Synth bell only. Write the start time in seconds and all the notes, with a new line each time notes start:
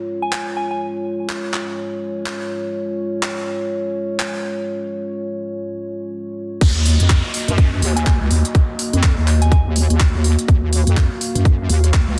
0.22 G#5
0.32 G#5
0.57 G#5
0.71 G#5
7.96 G#5
8.06 G#5
9.42 G#5
9.51 G#5